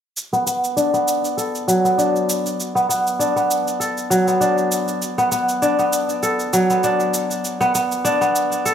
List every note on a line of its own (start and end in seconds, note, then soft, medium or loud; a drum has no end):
0.17 cabasa soft
0.33 0.46 B3 medium
0.33 cabasa soft
0.46 0.93 B3 medium
0.46 cabasa medium
0.64 cabasa soft
0.76 1.98 D4 medium
0.76 cabasa soft
0.93 1.84 B3 medium
0.93 cabasa soft
1.08 cabasa medium
1.25 cabasa soft
1.37 2.69 A4 medium
1.37 cabasa soft
1.55 cabasa soft
1.68 4.02 F#3 medium
1.68 cabasa medium
1.85 2.75 B3 medium
1.85 cabasa soft
1.98 3.19 D4 medium
1.98 cabasa soft
2.16 cabasa soft
2.29 cabasa medium
2.46 cabasa soft
2.60 cabasa soft
2.75 2.89 B3 medium
2.75 cabasa soft
2.89 3.36 B3 medium
2.89 cabasa medium
3.07 cabasa soft
3.19 4.40 D4 medium
3.19 cabasa soft
3.36 4.27 B3 medium
3.36 cabasa soft
3.51 cabasa medium
3.68 cabasa soft
3.80 5.12 A4 medium
3.80 cabasa soft
3.98 cabasa soft
4.10 6.44 F#3 medium
4.10 cabasa medium
4.28 5.18 B3 medium
4.28 cabasa soft
4.41 5.62 D4 medium
4.41 cabasa soft
4.58 cabasa soft
4.72 cabasa medium
4.88 cabasa soft
5.02 cabasa soft
5.18 5.31 B3 medium
5.18 cabasa soft
5.31 5.78 B3 medium
5.31 cabasa medium
5.49 cabasa soft
5.62 6.83 D4 medium
5.62 cabasa soft
5.79 6.70 B3 medium
5.79 cabasa soft
5.93 cabasa medium
6.09 cabasa soft
6.23 7.54 A4 medium
6.23 cabasa soft
6.40 cabasa soft
6.53 8.74 F#3 medium
6.53 cabasa medium
6.70 7.60 B3 medium
6.70 cabasa soft
6.84 8.04 D4 medium
6.84 cabasa soft
7.00 cabasa soft
7.14 cabasa medium
7.31 cabasa soft
7.45 cabasa soft
7.61 7.74 B3 medium
7.61 cabasa soft
7.75 8.21 B3 medium
7.75 cabasa medium
7.92 cabasa soft
8.05 8.74 D4 medium
8.05 cabasa soft
8.21 8.74 B3 medium
8.21 cabasa soft
8.36 cabasa medium
8.52 cabasa soft
8.65 8.74 A4 medium
8.65 cabasa soft